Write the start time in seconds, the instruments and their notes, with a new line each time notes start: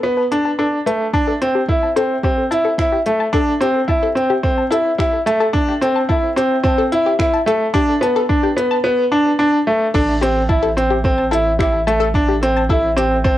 0.03 grand piano B3
0.17 synth arpeggio sound B4
0.32 grand piano D4, closed hi-hat
0.45 synth arpeggio sound A5
0.59 grand piano D4, synth arpeggio sound A4
0.86 grand piano A3, synth arpeggio sound B4, closed hi-hat
1.13 grand piano D4, synth arpeggio sound A5, kick
1.28 synth arpeggio sound A4
1.42 grand piano C4, closed hi-hat
1.55 synth arpeggio sound G4
1.69 grand piano E4, kick
1.83 synth arpeggio sound A5
1.96 grand piano C4, synth arpeggio sound A4, closed hi-hat
2.23 grand piano C4, synth arpeggio sound G4, kick
2.51 grand piano E4, synth arpeggio sound A5, closed hi-hat
2.65 synth arpeggio sound A4
2.78 grand piano E4, finger snap, kick
2.92 synth arpeggio sound G4
3.06 grand piano A3, closed hi-hat
3.20 synth arpeggio sound A5
3.33 grand piano D4, synth arpeggio sound A4, kick
3.61 grand piano C4, synth arpeggio sound G4, closed hi-hat
3.88 grand piano E4, synth arpeggio sound A5, kick
4.03 synth arpeggio sound A4
4.15 grand piano C4, closed hi-hat
4.30 synth arpeggio sound G4
4.43 grand piano C4, kick
4.58 synth arpeggio sound A5
4.71 grand piano E4, synth arpeggio sound A4, closed hi-hat
4.98 grand piano E4, synth arpeggio sound G4, finger snap, kick
5.26 grand piano A3, synth arpeggio sound A5, closed hi-hat
5.40 synth arpeggio sound A4
5.53 grand piano D4, kick
5.69 synth arpeggio sound G4
5.81 grand piano C4, closed hi-hat
5.96 synth arpeggio sound A5
6.09 grand piano E4, synth arpeggio sound A4, kick
6.36 grand piano C4, synth arpeggio sound G4, closed hi-hat
6.64 grand piano C4, synth arpeggio sound A5, kick
6.78 synth arpeggio sound A4
6.92 grand piano E4, closed hi-hat
7.06 synth arpeggio sound G4
7.19 grand piano E4, finger snap, kick
7.34 synth arpeggio sound A5
7.46 grand piano A3, synth arpeggio sound A4, closed hi-hat
7.74 grand piano D4, synth arpeggio sound G4, kick
8.01 grand piano B3, synth arpeggio sound A5, closed hi-hat
8.16 synth arpeggio sound A4
8.29 grand piano D4, kick
8.43 synth arpeggio sound G4
8.57 grand piano B3, closed hi-hat
8.71 synth arpeggio sound A5
8.84 grand piano B3
9.12 grand piano D4
9.39 grand piano D4
9.67 grand piano A3
9.94 analog synth bass A1, grand piano D4, synth arpeggio sound A4, kick, crash
10.22 grand piano C4, synth arpeggio sound G4, closed hi-hat
10.49 grand piano E4, synth arpeggio sound A5, kick
10.63 synth arpeggio sound A4
10.77 grand piano C4, closed hi-hat
10.91 synth arpeggio sound G4
11.04 grand piano C4, kick
11.18 synth arpeggio sound A5
11.31 grand piano E4, synth arpeggio sound A4, closed hi-hat
11.59 grand piano E4, synth arpeggio sound G4, finger snap, kick
11.87 grand piano A3, synth arpeggio sound A5, closed hi-hat
12.00 synth arpeggio sound A4
12.14 grand piano D4, kick
12.28 synth arpeggio sound G4
12.43 grand piano C4, closed hi-hat
12.56 synth arpeggio sound A5
12.69 grand piano E4, synth arpeggio sound A4, kick
12.97 grand piano C4, synth arpeggio sound G4, closed hi-hat
13.24 grand piano C4, synth arpeggio sound A5, kick